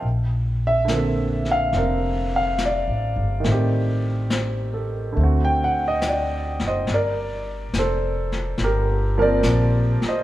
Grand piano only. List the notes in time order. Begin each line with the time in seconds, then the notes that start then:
0.67 E5
0.85 D3 A#3
0.92 C4
0.96 A4
1.51 F5
1.74 C4 D4 A#4
2.36 F5
2.65 D5
3.40 D#3 A3
3.48 C4
3.52 G4
4.31 C5
4.74 A4
5.12 D3 A3
5.19 C4
5.24 F#4
5.45 G5
5.64 F#5
5.88 D#5
6.09 D5
6.67 C5 D#5
6.94 A#4 D5
7.79 A4 C5
8.64 G4 A#4
9.18 F3 A#3 C4 A#4
9.22 A#4 D5
10.08 C5 D#5